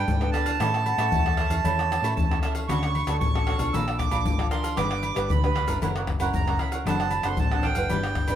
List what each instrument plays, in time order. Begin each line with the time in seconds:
Already playing: nylon-string guitar B3 D4 A4, cavaquinho A4 B4 D5, accordion G5
0.08 fingered electric bass G#2, nylon-string guitar D3, pandeiro, shaker, surdo
0.21 nylon-string guitar B3 D4 A4, cavaquinho A4 B4 D5, pandeiro, tamborim, shaker
0.32 cavaquinho G4 A4 B4, accordion A5, pandeiro, tamborim, high agogo, shaker
0.36 cavaquinho D5
0.46 cavaquinho A4 B4 D5, pandeiro, high agogo, shaker
0.60 fingered electric bass A2, nylon-string guitar A3 C#4 E4 A4, cavaquinho E4 A4 C#5 E5, pandeiro, tamborim, low agogo, shaker, surdo
0.74 cavaquinho A4 C#5 E5, pandeiro, tamborim, shaker
0.85 flute F#5, muted cavaquinho stroke, pandeiro, low agogo, shaker
0.98 fingered electric bass A2, nylon-string guitar C#4 E4 A4, cavaquinho A4 C#5 E5, pandeiro, tamborim, low agogo, shaker
1.12 fingered electric bass E2, nylon-string guitar E3, pandeiro, shaker, surdo
1.26 nylon-string guitar C#4 E4 A4, cavaquinho A4 C#5 E5, pandeiro, tamborim, shaker
1.37 cavaquinho E4 A4 C#5, flute E5, pandeiro, tamborim, high agogo
1.42 cavaquinho E5
1.50 fingered electric bass E2, nylon-string guitar C#4 E4 A4, cavaquinho A4 C#5 E5, pandeiro, high agogo, shaker
1.64 fingered electric bass E2, nylon-string guitar A3 C#4 E4 A4, cavaquinho E4 A4 C#5 E5, flute C#5, pandeiro, low agogo, shaker, surdo
1.78 cavaquinho A4 C#5 E5, pandeiro, tamborim, shaker
1.92 pandeiro, tamborim, shaker
2.02 fingered electric bass A2, nylon-string guitar C#4 E4 A4, cavaquinho A4 C#5 E5, pandeiro, low agogo, shaker
2.15 fingered electric bass E2, nylon-string guitar E3, accordion A5, pandeiro, shaker, surdo
2.31 nylon-string guitar C#4 E4 A4, cavaquinho A4 C#5 E5, pandeiro, tamborim, shaker
2.41 cavaquinho E4 A4 C#5, accordion A5, pandeiro, tamborim, high agogo, shaker
2.45 cavaquinho E5
2.55 cavaquinho A4 C#5 E5, pandeiro, high agogo, shaker
2.68 fingered electric bass D2, nylon-string guitar D3 C#4 F#4 A4, cavaquinho F#4 A4, accordion C#6, pandeiro, tamborim, low agogo, shaker, surdo
2.72 cavaquinho C#5 D5
2.83 cavaquinho A4 C#5 D5, pandeiro, tamborim, shaker
2.95 muted cavaquinho stroke, pandeiro, low agogo
3.07 fingered electric bass D2, nylon-string guitar C#4 F#4 A4, cavaquinho C#5 D5, pandeiro, tamborim, low agogo, shaker
3.11 cavaquinho A4
3.20 fingered electric bass A1, nylon-string guitar A2, accordion C#6, pandeiro, shaker, surdo
3.34 nylon-string guitar C#4 F#4 A4, cavaquinho C#5 D5, pandeiro, tamborim, shaker
3.38 cavaquinho A4
3.47 cavaquinho F#4 A4 C#5 D5, pandeiro, tamborim, high agogo
3.58 fingered electric bass B1, nylon-string guitar D4 F4 A4, cavaquinho A4 C#5 D5, pandeiro, high agogo, shaker
3.73 fingered electric bass A#1, nylon-string guitar A#3, cavaquinho A#4 D5 F5 A5, accordion E6, pandeiro, low agogo, shaker, surdo
3.87 cavaquinho D5 F5 A5, pandeiro, tamborim, shaker
3.98 accordion D6, muted cavaquinho stroke, pandeiro, tamborim, shaker, surdo
4.11 fingered electric bass A#1, nylon-string guitar D4 F4 A4, cavaquinho D5 F5 A5, pandeiro, low agogo, shaker
4.26 fingered electric bass G#1, nylon-string guitar F3, pandeiro, shaker, surdo
4.38 nylon-string guitar D4 F4 A4, cavaquinho D5 F5 A5, pandeiro, tamborim, shaker
4.51 cavaquinho A#4 D5 F5 A5, accordion C6, pandeiro, tamborim, high agogo, shaker
4.63 cavaquinho D5 F5 A5, pandeiro, high agogo, shaker
4.76 fingered electric bass G1, nylon-string guitar G3 D4 G4 B4, cavaquinho D4 G4 B4 D5, accordion D6, pandeiro, tamborim, low agogo, shaker, surdo
4.91 cavaquinho G4 B4 D5, pandeiro, tamborim, shaker
5.02 muted cavaquinho stroke, pandeiro, low agogo, shaker
5.14 fingered electric bass G1, nylon-string guitar D4 G4 B4, cavaquinho G4 B4 D5, pandeiro, tamborim, low agogo, shaker
5.30 fingered electric bass D2, nylon-string guitar D3, accordion B5, pandeiro, shaker, surdo
5.41 nylon-string guitar D4 G4 B4, cavaquinho G4 B4 D5, pandeiro, tamborim, shaker
5.54 cavaquinho D4 G4 B4 D5, pandeiro, tamborim, high agogo
5.66 fingered electric bass G1, nylon-string guitar C#4 E4 A#4, cavaquinho G4 B4 D5, pandeiro, high agogo, shaker
5.81 fingered electric bass F#1, nylon-string guitar F#3, cavaquinho E4 A#4 C#5 F#5, pandeiro, low agogo, shaker, surdo
5.96 cavaquinho A#4 C#5 F#5, pandeiro, tamborim, shaker
6.07 muted cavaquinho stroke, pandeiro, tamborim, surdo
6.20 fingered electric bass F#1, nylon-string guitar C#4 E4 A#4, cavaquinho A#4 C#5 F#5, pandeiro, low agogo, shaker
6.34 fingered electric bass F#1, nylon-string guitar C#3, accordion A#5, pandeiro, shaker, surdo
6.48 nylon-string guitar C#4 E4 A#4, cavaquinho A#4 C#5 F#5, pandeiro, tamborim, shaker
6.59 cavaquinho E4 A#4 C#5 F#5, accordion B5, pandeiro, tamborim, high agogo
6.72 cavaquinho A#4 C#5 F#5, pandeiro, high agogo, shaker
6.86 fingered electric bass F#1, nylon-string guitar F#3 C4 D4 A4, cavaquinho D4 A4 C5 F#5, accordion A5, pandeiro, tamborim, low agogo, shaker, surdo
7.00 cavaquinho A4 C5 F#5, pandeiro, tamborim, shaker
7.11 muted cavaquinho stroke, pandeiro, low agogo, shaker
7.23 fingered electric bass F#1, nylon-string guitar C4 D4 A4, cavaquinho A4 C5 F#5, accordion C6, pandeiro, tamborim, low agogo, shaker
7.37 fingered electric bass A1, nylon-string guitar F#3, accordion A5, pandeiro, shaker, surdo
7.51 nylon-string guitar C4 D4 A4, cavaquinho A4 C5 F#5, pandeiro, tamborim, shaker
7.63 cavaquinho D4 A4 C5 F#5, accordion G5, pandeiro, tamborim, high agogo
7.75 fingered electric bass F#1, nylon-string guitar D4 E4 B4, cavaquinho A4 C5 F#5, pandeiro, high agogo, shaker
7.90 fingered electric bass G1, nylon-string guitar G3, cavaquinho E4 G4 B4 D5, pandeiro, low agogo, shaker, surdo
8.04 cavaquinho G4 B4 D5, pandeiro, tamborim, shaker
8.15 muted cavaquinho stroke, pandeiro, tamborim, surdo
8.28 fingered electric bass G1, nylon-string guitar D4 E4 B4, cavaquinho G4 B4 D5, pandeiro, low agogo, shaker